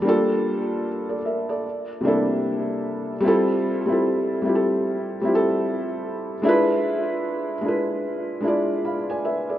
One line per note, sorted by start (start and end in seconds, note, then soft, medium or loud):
0.02 1.14 G3 loud
0.02 1.15 A#3 medium
0.02 1.15 D4 medium
0.07 1.16 F4 medium
0.07 0.86 A4 loud
1.09 1.24 A4 medium
1.09 1.24 D5 medium
1.25 1.48 A#4 medium
1.25 1.48 E5 medium
1.49 1.87 A4 medium
1.49 1.87 D5 medium
2.01 3.13 C3 medium
2.01 3.14 G3 medium
2.01 3.15 A#3 medium
2.05 3.15 D4 medium
2.05 3.16 E4 medium
2.05 3.17 A4 medium
3.20 3.79 G3 loud
3.20 3.80 C4 loud
3.20 3.81 E4 medium
3.26 3.82 F4 loud
3.26 3.83 A4 loud
3.86 4.38 G3 medium
3.86 4.39 C4 medium
3.86 4.40 E4 medium
3.91 4.40 F4 medium
3.91 4.41 A4 medium
4.42 5.17 G3 medium
4.42 5.18 C4 medium
4.42 5.19 E4 medium
4.47 5.20 F4 medium
4.47 4.55 G4 medium
4.55 5.24 A4 medium
5.21 6.34 G3 medium
5.21 6.34 C4 medium
5.21 6.35 E4 medium
5.27 6.36 F4 medium
5.27 5.34 G4 medium
5.35 6.40 A4 loud
6.42 7.54 G#3 medium
6.42 7.54 D4 loud
6.42 7.55 E4 loud
6.47 7.56 F4 loud
6.47 7.57 B4 loud
7.61 8.36 G#3 medium
7.61 8.37 D4 medium
7.61 8.38 E4 medium
7.66 8.39 F4 medium
7.66 8.40 B4 medium
8.41 9.53 G#3 medium
8.41 9.54 D4 medium
8.41 9.55 E4 medium
8.46 9.56 F4 medium
8.46 8.86 D5 medium
8.85 9.08 F5 soft
8.85 9.08 B5 medium
9.10 9.24 D5 medium
9.10 9.24 G#5 medium
9.25 9.48 B4 medium
9.25 9.48 E5 medium
9.49 9.59 G#4 medium
9.49 9.59 D5 medium